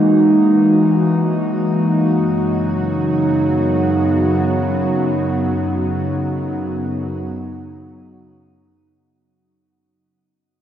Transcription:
Already playing: E3 F#3 G#3 A#3 D#4 F#4
2.08 F#2
2.14 F#3
2.28 C#3
2.89 B3

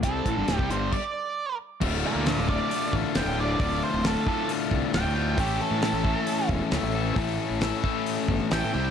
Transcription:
0.03 C2 C3 G3 C4 A4, kick, closed hi-hat
0.25 A1 A2 E3, kick, closed hi-hat
0.37 G1 G2 D3
0.48 D1 D2 A2, snare, closed hi-hat
0.56 C2 C3 G4, kick
0.60 G3
0.70 G1 G2 D3 G3 C5, closed hi-hat
0.92 D5, kick, crash
1.81 D1 D2 A2 D3 A3 F4, kick, crash
2.06 F4 D5
2.15 D2
2.26 A2 D3 A3 F4 D5 F5, snare, open hi-hat
2.38 D1
2.48 D2 A2 D3 A3 F4 D5, kick
2.71 open hi-hat
2.93 A1, kick
3.15 F1 D2 A2 D3 A3 F4 G5, snare, open hi-hat
3.25 D1
3.38 D3 A3 F4 D5
3.59 D1 D2 A2 D3 A3 F4, kick, open hi-hat
3.84 C5
3.94 D1
4.04 A2 D3 A3 F4 A4, snare, open hi-hat
4.26 D2 A2 D3 A3 F4 A4, kick
4.49 open hi-hat
4.71 C2, kick
4.93 D1 D2 A2 D3 A3 F4 G5, snare, open hi-hat
5.05 D2
5.15 D3 A3 F4
5.37 A1 A2 E3 A3 C#4 E4 G4 A4, kick, open hi-hat
5.62 A4
5.71 A2
5.82 A3 C#4 E4 A4, snare, open hi-hat
5.93 A1
6.04 A2 E3 A3 C#4 E4 A4, kick
6.27 open hi-hat
6.49 E1, kick
6.71 C#2 A2 E3 A3 C#4 E4 A4, snare, open hi-hat
6.83 A1
6.95 A3 C#4 E4 A4
7.16 A1 A2 E3 A3 C#4 E4 A4, kick, open hi-hat
7.50 A1
7.61 A3 C#4 E4 A4, snare, open hi-hat
7.84 A2 E3 A3 C#4 E4 A4, kick
8.06 open hi-hat
8.28 G1, kick
8.51 A1 A2 E3 A3 C#4 E4 A4 G5, snare, open hi-hat
8.64 A2
8.73 C2 C3 G3 C4 E4 G4 C5

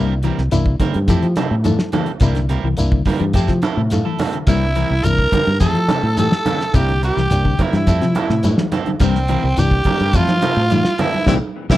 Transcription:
Already playing: C2 G3 A#3 C4 D4 E4 A#4
0.23 E3 G3 C4 E4 A#4, closed hi-hat, low conga, shekere
0.38 C2, snare
0.51 C2 E3 A#3 D4 E4, closed hi-hat, shekere
0.66 kick
0.80 D3 G3 C4 E4 A#4, muted fingered electric bass stroke, kick, closed hi-hat, high conga, low conga, shekere
0.94 G2, closed hi-hat
1.08 F2 E3 A3 C4 E4 G4 A4, kick, snare, closed hi-hat, shekere
1.23 F3, closed hi-hat
1.36 C3 C4 E4 A4, snare, closed hi-hat, high conga, shekere
1.51 A2
1.64 E3 A3 E4 A4, closed hi-hat, high conga, shekere
1.79 snare
1.92 E3 C4 E4 A4, closed hi-hat, high conga, low conga, shekere
2.06 closed hi-hat
2.20 C2 C3 G3 A#3 C4 D4 E4 A#4, kick, closed hi-hat, low conga, shekere
2.35 D3, snare, closed hi-hat
2.49 G3 C4 E4 A#4, closed hi-hat, low conga, shekere
2.64 C2 E3
2.77 C2 A#3 D4 E4, closed hi-hat, shekere
2.92 D3, kick
3.05 G3 C4 E4 A#4, kick, open hi-hat, high conga, low conga, shekere
3.20 G2 E3, closed hi-hat
3.33 F2 A3 C4 E4 G4 A4, kick, closed hi-hat, shekere
3.48 C3 F3, kick, snare, closed hi-hat
3.62 C4 E4 A4 E5, closed hi-hat, high conga, shekere
3.77 A2 C3
3.90 A3 E4 A4 F5, snare, closed hi-hat, high conga, shekere
4.05 E3 E4 A4 A5
4.19 C4 E4 A4, open hi-hat, high conga, low conga, shekere
4.33 D3, closed hi-hat
4.47 C2 G3 A#3 C4 D4 E4 A#4, kick, snare, closed hi-hat, low conga, shekere
4.75 E3 G3 C4 E4 A#4, closed hi-hat, shekere
4.90 C2
5.03 C2 E3 A#3 D4 E4 A#4, closed hi-hat, shekere
5.18 kick
5.32 D3 G3 C4 E4 A#4, muted fingered electric bass stroke, kick, closed hi-hat, high conga, low conga, shekere
5.46 G2, closed hi-hat
5.60 F2 E3 A3 C4 E4 G4 A4, kick, closed hi-hat, shekere
5.75 F3, closed hi-hat
5.88 C3 C4 E4 A4, snare, closed hi-hat, high conga, shekere
6.03 A2
6.17 E3 A3 E4 G4 A4, closed hi-hat, high conga, shekere
6.32 snare
6.45 D3 C4 E4 A4, closed hi-hat, high conga, low conga, shekere
6.60 snare, closed hi-hat
6.73 C2 C3 G3 A#3 C4 D4 E4 G4 A#4, kick, closed hi-hat, low conga, shekere
6.88 D3, closed hi-hat
7.02 G3 C4 E4 G4 A#4, closed hi-hat, shekere
7.17 C2 E3, snare
7.30 C2 A#3 D4 G4, snare, closed hi-hat, shekere
7.45 D3, kick
7.59 C4 E4 A#4, kick, closed hi-hat, high conga, low conga, shekere
7.63 E4
7.73 G2 E3 E4, snare, closed hi-hat
7.78 E4
7.87 F2 G3 A3 C4 E4 A4, kick, snare, closed hi-hat, shekere
8.02 C3 F3, snare, closed hi-hat
8.15 C4 E4 A4, closed hi-hat, high conga, shekere
8.30 A2 C3, snare
8.43 G3 A3 E4, closed hi-hat, high conga, shekere
8.58 E3, snare, high conga
8.72 C4 E4 A4, closed hi-hat, high conga, low conga, shekere
8.86 D3, closed hi-hat, high conga
9.00 C2 E3 G3 A#3 C4 D4 E4 A#4, kick, snare, closed hi-hat, shekere
9.15 snare
9.28 E3 G3 C4 E4 A#4, closed hi-hat, low conga, shekere
9.44 C2
9.57 C2 E3 A#3 D4 G4, closed hi-hat, shekere
9.61 G4
9.71 kick
9.84 D3 G3 C4 E4 A#4, muted fingered electric bass stroke, kick, closed hi-hat, high conga, low conga, shekere
9.99 G2 C4 E4 A#4, closed hi-hat
10.13 F2 E3 G3 A3 C4 E4 F4 A4, kick, closed hi-hat, shekere
10.18 F4
10.28 F3, snare, closed hi-hat, high conga
10.42 C3 C4 E4 A4, snare, closed hi-hat, high conga, shekere
10.57 A2
10.70 E3 G3 A3 E4, closed hi-hat, high conga, shekere
10.85 snare
10.98 D3 C4 E4 A4, closed hi-hat, high conga, low conga, shekere
11.13 closed hi-hat, high conga
11.27 C2 A#2 C3 E3 G3 A#3 C4 E4 G4, kick, snare, high conga, shekere
11.70 C2 A#2 C3 E3 G3 A#3 C4 E4 G4, kick, snare, high conga, shekere

